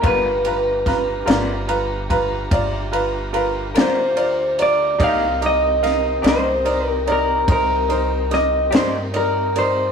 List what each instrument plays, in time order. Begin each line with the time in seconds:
0.02 upright bass G1, clean electric guitar G3 B3 F4 A#4, tonewheel organ D4 F4 G4 A#5, upright piano F4 B4 A#5, kick, ride
0.07 clean electric guitar B4
0.45 upright piano F4 B4 A#5, ride
0.86 upright piano F4 B4 A#5, kick, snare, ride
1.26 upright bass G1, clean electric guitar G3 B3 F4 A#4, upright piano F4 D5 A#5, ride
1.30 snare
1.67 upright piano F4 B4 A#5, ride
2.10 upright piano F4 B4 A#5, kick, ride
2.51 upright bass G1, upright piano F4 D5 A#5, kick, ride
2.92 upright piano F4 B4 A#5, ride
3.33 upright piano F4 A#4 B4, ride
3.75 upright bass D2, clean electric guitar G3 B3 F4 A#4, upright piano F4 A#4 D5, snare, ride
3.81 clean electric guitar C5
4.16 upright piano F4 A#4 D5, ride
4.58 upright piano F4 A#4 D5, ride
4.62 clean electric guitar D5
4.98 upright bass C2, clean electric guitar C3 A#3 D#4 G4, tonewheel organ C4 D#4 G4 A#4, upright piano D#4 A#4 D5, kick, ride
5.04 clean electric guitar F5
5.41 upright piano D#4 A#4 D6, ride
5.46 clean electric guitar D#5
5.83 upright piano D#4 A#4 F5, snare, ride
6.22 upright bass C2, clean electric guitar C3 A#3 D#4 G4, upright piano D#4 A#4 D5, ride
6.26 clean electric guitar C5, snare
6.64 upright piano D#4 A#4 D5, ride
6.89 clean electric guitar A#4
7.07 upright piano D#4 A#4 D5, ride
7.12 clean electric guitar A#4
7.48 upright bass C2, upright piano D#4 A#4 C5, clean electric guitar A#4, kick, ride
7.89 upright piano D#4 A#4 C5, ride
8.31 upright piano D#4 A#4 D6, clean electric guitar D#5, snare, ride
8.71 upright bass G2, clean electric guitar C3 A#3 D#4 G4, upright piano D#4 A#4 D5, snare, ride
8.76 clean electric guitar C5
9.13 upright piano D#4 A#4 D5, clean electric guitar A#4, ride
9.56 upright piano D#4 A#4 D5, clean electric guitar C5, ride